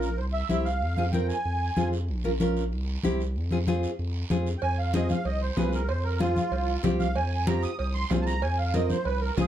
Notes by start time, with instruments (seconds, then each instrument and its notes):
Already playing: sub bass A#1, accordion A#4
0.02 short guiro
0.17 sub bass C2, accordion C5, long guiro
0.33 accordion E5
0.49 sub bass C2, nylon-string guitar C4 E4 G4, high conga, short guiro
0.65 accordion F5, short guiro
0.81 sub bass F2, long guiro
0.97 nylon-string guitar C4 F4 G#4, high conga
1.12 nylon-string guitar C4 F4 A#4, accordion G5, high conga, short guiro
1.28 accordion G#5, short guiro
1.45 sub bass F2, long guiro
1.76 sub bass F2, nylon-string guitar C4 F4 G#4, high conga, short guiro
1.93 short guiro
2.09 sub bass A#1, long guiro
2.24 nylon-string guitar C#4 F4 A#4, high conga
2.40 nylon-string guitar C#4 F4 A#4, high conga, short guiro
2.57 short guiro
2.72 sub bass C2, long guiro
3.03 sub bass C2, nylon-string guitar C4 E4 G4, high conga, short guiro
3.21 short guiro
3.36 sub bass F2, long guiro
3.51 nylon-string guitar C4 F4 G#4, high conga
3.67 nylon-string guitar C4 F4 G#4, high conga, short guiro
3.83 short guiro
3.99 sub bass F2, long guiro
4.30 sub bass F2, nylon-string guitar C4 F4 G#4, high conga, short guiro
4.47 short guiro
4.58 accordion G5, cowbell, long guiro
4.62 sub bass F2, accordion G#5, high conga
4.78 accordion F5
4.94 nylon-string guitar C4 F4 G#4, accordion D#5, cowbell, high conga, short guiro
5.09 accordion F5, high conga, short guiro
5.25 sub bass C2, accordion D#5, cowbell, long guiro
5.41 accordion C5, high conga
5.57 sub bass C2, nylon-string guitar C4 F4 G#4, accordion B4, cowbell, high conga, low timbale, short guiro
5.73 accordion A#4, short guiro
5.88 sub bass F2, accordion C5, cowbell, high conga, long guiro
6.04 accordion A#4
6.19 nylon-string guitar C4 F4 G#4, accordion F4, cowbell, high conga, short guiro
6.36 high conga, short guiro
6.51 sub bass C2, cowbell, long guiro
6.68 high conga
6.83 sub bass C2, nylon-string guitar C4 F4 G4, cowbell, high conga, low conga, short guiro
7.00 accordion F5, high conga, short guiro
7.15 sub bass F2, accordion G#5, cowbell, high conga, long guiro
7.47 nylon-string guitar C4 F4 G4, accordion A#5, cowbell, high conga, short guiro
7.63 accordion D#6, short guiro
7.79 sub bass C2, accordion D#6, cowbell, long guiro
7.94 accordion C6, high conga
8.10 sub bass C2, nylon-string guitar C4 F4 G#4, cowbell, high conga, low timbale, short guiro
8.22 accordion A5
8.26 accordion A#5, short guiro
8.42 sub bass F2, accordion G#5, cowbell, high conga, long guiro
8.59 accordion F5
8.74 nylon-string guitar C4 F4 A#4, accordion D#5, cowbell, high conga, short guiro
8.90 accordion C5, high conga, short guiro
9.05 sub bass C2, accordion B4, cowbell, long guiro
9.21 accordion A#4, high conga
9.37 sub bass C2, nylon-string guitar C4 F4 G#4, accordion G#4, cowbell, high conga, low conga, short guiro